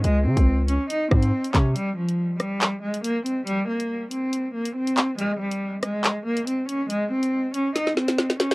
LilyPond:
<<
  \new Staff \with { instrumentName = "Cello" } { \time 4/4 \key c \phrygian \tempo 4 = 140 aes8 c'4 des'8 ees'8 c'4 des'8 | g8 f4 g4 aes8 bes8 c'8 | g8 bes4 c'4 bes8 c'4 | aes8 g4 aes4 bes8 c'8 des'8 |
aes8 c'4 des'8 ees'8 c'4 des'8 | }
  \new Staff \with { instrumentName = "808-style bass" } { \clef bass \time 4/4 \key c \phrygian des,8 des16 des,4 r8. aes,8 r8 c8 | r1 | r1 | r1 |
r1 | }
  \new DrumStaff \with { instrumentName = "Drums" } \drummode { \time 4/4 hh8. <hh bd>16 r8 hh8 hh8 <bd ss>16 hh16 r16 hh16 <hc hh bd>8 | hh8. hh16 r8 <hh ss>8 <hc hh>8. hh16 hh8 hh8 | hh8. hh16 r8 hh8 hh8. hh16 r16 hh16 <hc hh>8 | hh8. hh16 r8 <hh ss>8 <hc hh>8. hh16 hh8 hh8 |
hh8. hh16 r8 hh8 <hh sn>16 sn16 sn16 <hh sn>16 sn16 <hh sn>16 <hh sn>16 sn16 | }
>>